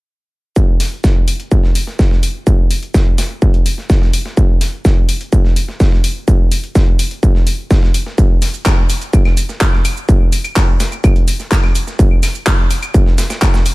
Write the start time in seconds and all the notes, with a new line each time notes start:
0.56 kick, shaker
0.80 snare, open hi-hat
1.04 kick, snare, shaker
1.28 open hi-hat, shaker
1.40 closed hi-hat
1.52 kick, shaker
1.63 snare
1.75 open hi-hat, shaker
1.87 snare
1.99 kick, snare, shaker
2.11 snare
2.23 open hi-hat, shaker
2.47 kick, shaker
2.71 open hi-hat, shaker
2.83 closed hi-hat
2.94 kick, snare, shaker
3.18 snare, open hi-hat, shaker
3.42 kick, shaker
3.54 closed hi-hat
3.66 open hi-hat, shaker
3.78 snare
3.90 kick, snare, shaker
4.02 snare
4.13 open hi-hat, shaker
4.25 snare
4.37 kick, shaker
4.61 snare, open hi-hat
4.85 kick, snare, shaker
5.09 open hi-hat, shaker
5.21 closed hi-hat
5.33 kick, shaker
5.45 snare
5.56 open hi-hat, shaker
5.68 snare
5.80 kick, snare, shaker
5.92 snare
6.04 open hi-hat, shaker
6.28 kick, shaker
6.52 open hi-hat, shaker
6.64 closed hi-hat
6.75 kick, snare, shaker
6.99 open hi-hat, shaker
7.11 closed hi-hat
7.23 kick, shaker
7.35 snare
7.47 open hi-hat, shaker
7.71 kick, snare, shaker
7.83 snare
7.94 open hi-hat, shaker
8.06 snare
8.18 kick, shaker
8.42 snare, open hi-hat, shaker
8.54 shaker
8.66 kick, snare, clap, claves, shaker
8.90 open hi-hat, shaker
9.01 closed hi-hat, shaker
9.13 kick, shaker
9.25 snare, claves
9.37 open hi-hat, shaker
9.49 snare, shaker
9.61 kick, snare, clap, shaker
9.73 snare
9.85 open hi-hat, claves, shaker
9.97 shaker
10.09 kick, shaker
10.32 open hi-hat, shaker
10.44 closed hi-hat, claves, shaker
10.56 kick, snare, clap, shaker
10.80 snare, open hi-hat, shaker
10.92 shaker
11.04 kick, claves, shaker
11.16 closed hi-hat
11.28 open hi-hat, shaker
11.40 snare, shaker
11.52 kick, snare, clap, shaker
11.63 snare, claves
11.75 open hi-hat, shaker
11.87 snare, shaker
11.99 kick, shaker
12.23 snare, open hi-hat, claves, shaker
12.35 shaker
12.47 kick, snare, clap, shaker
12.71 open hi-hat, shaker
12.82 closed hi-hat, claves, shaker
12.94 kick, shaker
13.06 snare
13.18 snare, open hi-hat, shaker
13.30 snare, shaker
13.42 kick, snare, clap, claves, shaker
13.54 snare, shaker
13.66 open hi-hat, shaker